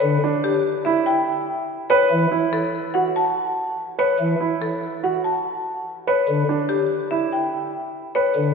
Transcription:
0, 0, Header, 1, 4, 480
1, 0, Start_track
1, 0, Tempo, 416667
1, 33, Time_signature, 5, 2, 24, 8
1, 9839, End_track
2, 0, Start_track
2, 0, Title_t, "Marimba"
2, 0, Program_c, 0, 12
2, 506, Note_on_c, 0, 67, 64
2, 823, Note_off_c, 0, 67, 0
2, 979, Note_on_c, 0, 76, 58
2, 1223, Note_on_c, 0, 79, 62
2, 1300, Note_off_c, 0, 76, 0
2, 1541, Note_off_c, 0, 79, 0
2, 2186, Note_on_c, 0, 73, 84
2, 2503, Note_off_c, 0, 73, 0
2, 2912, Note_on_c, 0, 69, 57
2, 3225, Note_off_c, 0, 69, 0
2, 3386, Note_on_c, 0, 78, 59
2, 3641, Note_on_c, 0, 81, 61
2, 3703, Note_off_c, 0, 78, 0
2, 3948, Note_off_c, 0, 81, 0
2, 4597, Note_on_c, 0, 73, 72
2, 4906, Note_off_c, 0, 73, 0
2, 5318, Note_on_c, 0, 69, 53
2, 5627, Note_off_c, 0, 69, 0
2, 5804, Note_on_c, 0, 78, 50
2, 6041, Note_on_c, 0, 81, 54
2, 6109, Note_off_c, 0, 78, 0
2, 6348, Note_off_c, 0, 81, 0
2, 7001, Note_on_c, 0, 73, 68
2, 7308, Note_off_c, 0, 73, 0
2, 7706, Note_on_c, 0, 67, 59
2, 8023, Note_off_c, 0, 67, 0
2, 8189, Note_on_c, 0, 76, 54
2, 8439, Note_on_c, 0, 79, 49
2, 8504, Note_off_c, 0, 76, 0
2, 8747, Note_off_c, 0, 79, 0
2, 9389, Note_on_c, 0, 73, 70
2, 9704, Note_off_c, 0, 73, 0
2, 9839, End_track
3, 0, Start_track
3, 0, Title_t, "Grand piano"
3, 0, Program_c, 1, 0
3, 274, Note_on_c, 1, 62, 66
3, 586, Note_off_c, 1, 62, 0
3, 990, Note_on_c, 1, 64, 67
3, 1304, Note_off_c, 1, 64, 0
3, 2191, Note_on_c, 1, 71, 83
3, 2505, Note_off_c, 1, 71, 0
3, 2667, Note_on_c, 1, 64, 63
3, 2983, Note_off_c, 1, 64, 0
3, 3396, Note_on_c, 1, 66, 62
3, 3706, Note_off_c, 1, 66, 0
3, 4591, Note_on_c, 1, 71, 68
3, 4905, Note_off_c, 1, 71, 0
3, 5075, Note_on_c, 1, 64, 54
3, 5386, Note_off_c, 1, 64, 0
3, 5800, Note_on_c, 1, 66, 55
3, 6107, Note_off_c, 1, 66, 0
3, 6997, Note_on_c, 1, 71, 68
3, 7307, Note_off_c, 1, 71, 0
3, 7478, Note_on_c, 1, 62, 58
3, 7787, Note_off_c, 1, 62, 0
3, 8197, Note_on_c, 1, 64, 56
3, 8506, Note_off_c, 1, 64, 0
3, 9394, Note_on_c, 1, 71, 66
3, 9705, Note_off_c, 1, 71, 0
3, 9839, End_track
4, 0, Start_track
4, 0, Title_t, "Pipe organ"
4, 0, Program_c, 2, 19
4, 24, Note_on_c, 2, 50, 82
4, 207, Note_off_c, 2, 50, 0
4, 2429, Note_on_c, 2, 52, 85
4, 2610, Note_off_c, 2, 52, 0
4, 4833, Note_on_c, 2, 52, 69
4, 5013, Note_off_c, 2, 52, 0
4, 7240, Note_on_c, 2, 50, 72
4, 7417, Note_off_c, 2, 50, 0
4, 9627, Note_on_c, 2, 50, 73
4, 9809, Note_off_c, 2, 50, 0
4, 9839, End_track
0, 0, End_of_file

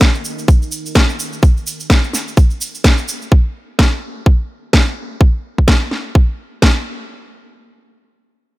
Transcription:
0, 0, Header, 1, 3, 480
1, 0, Start_track
1, 0, Tempo, 472441
1, 1450, Time_signature, 4, 2, 24, 8
1, 8720, End_track
2, 0, Start_track
2, 0, Title_t, "Ambient pad"
2, 0, Program_c, 0, 92
2, 0, Note_on_c, 0, 63, 84
2, 0, Note_on_c, 0, 70, 73
2, 0, Note_on_c, 0, 75, 87
2, 0, Note_on_c, 0, 77, 70
2, 3330, Note_off_c, 0, 63, 0
2, 3330, Note_off_c, 0, 70, 0
2, 3330, Note_off_c, 0, 75, 0
2, 3330, Note_off_c, 0, 77, 0
2, 8720, End_track
3, 0, Start_track
3, 0, Title_t, "Drums"
3, 8, Note_on_c, 9, 38, 100
3, 8, Note_on_c, 9, 82, 48
3, 10, Note_on_c, 9, 36, 115
3, 109, Note_off_c, 9, 82, 0
3, 110, Note_off_c, 9, 38, 0
3, 111, Note_off_c, 9, 36, 0
3, 147, Note_on_c, 9, 82, 24
3, 249, Note_off_c, 9, 82, 0
3, 250, Note_on_c, 9, 82, 82
3, 351, Note_off_c, 9, 82, 0
3, 391, Note_on_c, 9, 82, 36
3, 490, Note_on_c, 9, 36, 117
3, 492, Note_off_c, 9, 82, 0
3, 492, Note_on_c, 9, 82, 53
3, 592, Note_off_c, 9, 36, 0
3, 593, Note_off_c, 9, 82, 0
3, 633, Note_on_c, 9, 82, 28
3, 728, Note_off_c, 9, 82, 0
3, 728, Note_on_c, 9, 82, 83
3, 830, Note_off_c, 9, 82, 0
3, 873, Note_on_c, 9, 82, 35
3, 967, Note_off_c, 9, 82, 0
3, 967, Note_on_c, 9, 82, 48
3, 968, Note_on_c, 9, 38, 113
3, 970, Note_on_c, 9, 36, 110
3, 1069, Note_off_c, 9, 82, 0
3, 1070, Note_off_c, 9, 38, 0
3, 1072, Note_off_c, 9, 36, 0
3, 1110, Note_on_c, 9, 82, 23
3, 1212, Note_off_c, 9, 82, 0
3, 1214, Note_on_c, 9, 82, 82
3, 1316, Note_off_c, 9, 82, 0
3, 1351, Note_on_c, 9, 82, 33
3, 1450, Note_off_c, 9, 82, 0
3, 1450, Note_on_c, 9, 36, 109
3, 1450, Note_on_c, 9, 82, 45
3, 1552, Note_off_c, 9, 36, 0
3, 1552, Note_off_c, 9, 82, 0
3, 1597, Note_on_c, 9, 82, 22
3, 1695, Note_off_c, 9, 82, 0
3, 1695, Note_on_c, 9, 82, 90
3, 1796, Note_off_c, 9, 82, 0
3, 1830, Note_on_c, 9, 82, 36
3, 1929, Note_on_c, 9, 38, 98
3, 1930, Note_on_c, 9, 36, 118
3, 1931, Note_off_c, 9, 82, 0
3, 1934, Note_on_c, 9, 82, 49
3, 2030, Note_off_c, 9, 38, 0
3, 2032, Note_off_c, 9, 36, 0
3, 2036, Note_off_c, 9, 82, 0
3, 2069, Note_on_c, 9, 82, 23
3, 2169, Note_on_c, 9, 38, 33
3, 2170, Note_off_c, 9, 82, 0
3, 2178, Note_on_c, 9, 82, 90
3, 2270, Note_off_c, 9, 38, 0
3, 2279, Note_off_c, 9, 82, 0
3, 2315, Note_on_c, 9, 82, 34
3, 2410, Note_off_c, 9, 82, 0
3, 2410, Note_on_c, 9, 36, 110
3, 2410, Note_on_c, 9, 82, 46
3, 2512, Note_off_c, 9, 36, 0
3, 2512, Note_off_c, 9, 82, 0
3, 2543, Note_on_c, 9, 82, 26
3, 2645, Note_off_c, 9, 82, 0
3, 2652, Note_on_c, 9, 82, 88
3, 2753, Note_off_c, 9, 82, 0
3, 2791, Note_on_c, 9, 82, 36
3, 2889, Note_on_c, 9, 38, 105
3, 2890, Note_off_c, 9, 82, 0
3, 2890, Note_on_c, 9, 36, 108
3, 2890, Note_on_c, 9, 82, 49
3, 2990, Note_off_c, 9, 38, 0
3, 2992, Note_off_c, 9, 36, 0
3, 2992, Note_off_c, 9, 82, 0
3, 3025, Note_on_c, 9, 82, 24
3, 3127, Note_off_c, 9, 82, 0
3, 3132, Note_on_c, 9, 82, 78
3, 3234, Note_off_c, 9, 82, 0
3, 3271, Note_on_c, 9, 82, 31
3, 3370, Note_on_c, 9, 36, 108
3, 3372, Note_off_c, 9, 82, 0
3, 3472, Note_off_c, 9, 36, 0
3, 3849, Note_on_c, 9, 38, 104
3, 3850, Note_on_c, 9, 36, 116
3, 3950, Note_off_c, 9, 38, 0
3, 3952, Note_off_c, 9, 36, 0
3, 4330, Note_on_c, 9, 36, 108
3, 4432, Note_off_c, 9, 36, 0
3, 4808, Note_on_c, 9, 38, 110
3, 4810, Note_on_c, 9, 36, 102
3, 4909, Note_off_c, 9, 38, 0
3, 4912, Note_off_c, 9, 36, 0
3, 5290, Note_on_c, 9, 36, 107
3, 5391, Note_off_c, 9, 36, 0
3, 5673, Note_on_c, 9, 36, 55
3, 5768, Note_on_c, 9, 38, 104
3, 5770, Note_off_c, 9, 36, 0
3, 5770, Note_on_c, 9, 36, 113
3, 5870, Note_off_c, 9, 38, 0
3, 5871, Note_off_c, 9, 36, 0
3, 6008, Note_on_c, 9, 38, 34
3, 6110, Note_off_c, 9, 38, 0
3, 6250, Note_on_c, 9, 36, 108
3, 6351, Note_off_c, 9, 36, 0
3, 6728, Note_on_c, 9, 38, 106
3, 6730, Note_on_c, 9, 36, 99
3, 6830, Note_off_c, 9, 38, 0
3, 6832, Note_off_c, 9, 36, 0
3, 8720, End_track
0, 0, End_of_file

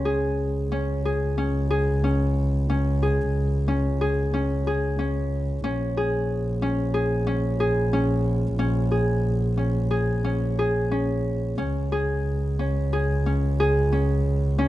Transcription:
0, 0, Header, 1, 3, 480
1, 0, Start_track
1, 0, Tempo, 657174
1, 1971, Time_signature, 9, 3, 24, 8
1, 7000, Tempo, 666667
1, 10669, End_track
2, 0, Start_track
2, 0, Title_t, "Harp"
2, 0, Program_c, 0, 46
2, 0, Note_on_c, 0, 61, 71
2, 38, Note_on_c, 0, 68, 58
2, 521, Note_off_c, 0, 61, 0
2, 524, Note_on_c, 0, 61, 65
2, 767, Note_off_c, 0, 68, 0
2, 770, Note_on_c, 0, 68, 62
2, 1003, Note_off_c, 0, 61, 0
2, 1005, Note_on_c, 0, 61, 63
2, 1242, Note_off_c, 0, 68, 0
2, 1245, Note_on_c, 0, 68, 70
2, 1485, Note_off_c, 0, 61, 0
2, 1488, Note_on_c, 0, 61, 64
2, 1966, Note_off_c, 0, 61, 0
2, 1969, Note_on_c, 0, 61, 71
2, 2207, Note_off_c, 0, 68, 0
2, 2210, Note_on_c, 0, 68, 62
2, 2684, Note_off_c, 0, 61, 0
2, 2687, Note_on_c, 0, 61, 64
2, 2927, Note_off_c, 0, 68, 0
2, 2930, Note_on_c, 0, 68, 68
2, 3164, Note_off_c, 0, 61, 0
2, 3167, Note_on_c, 0, 61, 60
2, 3408, Note_off_c, 0, 68, 0
2, 3411, Note_on_c, 0, 68, 71
2, 3640, Note_off_c, 0, 61, 0
2, 3643, Note_on_c, 0, 61, 64
2, 4115, Note_off_c, 0, 61, 0
2, 4118, Note_on_c, 0, 61, 75
2, 4360, Note_off_c, 0, 68, 0
2, 4363, Note_on_c, 0, 68, 66
2, 4833, Note_off_c, 0, 61, 0
2, 4836, Note_on_c, 0, 61, 69
2, 5066, Note_off_c, 0, 68, 0
2, 5069, Note_on_c, 0, 68, 67
2, 5305, Note_off_c, 0, 61, 0
2, 5308, Note_on_c, 0, 61, 68
2, 5548, Note_off_c, 0, 68, 0
2, 5551, Note_on_c, 0, 68, 72
2, 5789, Note_off_c, 0, 61, 0
2, 5792, Note_on_c, 0, 61, 66
2, 6270, Note_off_c, 0, 61, 0
2, 6273, Note_on_c, 0, 61, 77
2, 6508, Note_off_c, 0, 68, 0
2, 6511, Note_on_c, 0, 68, 66
2, 6990, Note_off_c, 0, 61, 0
2, 6993, Note_on_c, 0, 61, 60
2, 7230, Note_off_c, 0, 68, 0
2, 7233, Note_on_c, 0, 68, 67
2, 7473, Note_off_c, 0, 61, 0
2, 7475, Note_on_c, 0, 61, 61
2, 7720, Note_off_c, 0, 68, 0
2, 7723, Note_on_c, 0, 68, 65
2, 7955, Note_off_c, 0, 61, 0
2, 7958, Note_on_c, 0, 61, 60
2, 8433, Note_off_c, 0, 61, 0
2, 8436, Note_on_c, 0, 61, 70
2, 8680, Note_off_c, 0, 68, 0
2, 8683, Note_on_c, 0, 68, 63
2, 9163, Note_off_c, 0, 61, 0
2, 9166, Note_on_c, 0, 61, 65
2, 9405, Note_off_c, 0, 68, 0
2, 9408, Note_on_c, 0, 68, 68
2, 9645, Note_off_c, 0, 61, 0
2, 9648, Note_on_c, 0, 61, 60
2, 9888, Note_off_c, 0, 68, 0
2, 9891, Note_on_c, 0, 68, 74
2, 10122, Note_off_c, 0, 61, 0
2, 10125, Note_on_c, 0, 61, 66
2, 10598, Note_off_c, 0, 61, 0
2, 10601, Note_on_c, 0, 61, 77
2, 10669, Note_off_c, 0, 61, 0
2, 10669, Note_off_c, 0, 68, 0
2, 10669, End_track
3, 0, Start_track
3, 0, Title_t, "Double bass"
3, 0, Program_c, 1, 43
3, 0, Note_on_c, 1, 37, 65
3, 4110, Note_on_c, 1, 34, 74
3, 4121, Note_off_c, 1, 37, 0
3, 8447, Note_on_c, 1, 37, 70
3, 8458, Note_off_c, 1, 34, 0
3, 10669, Note_off_c, 1, 37, 0
3, 10669, End_track
0, 0, End_of_file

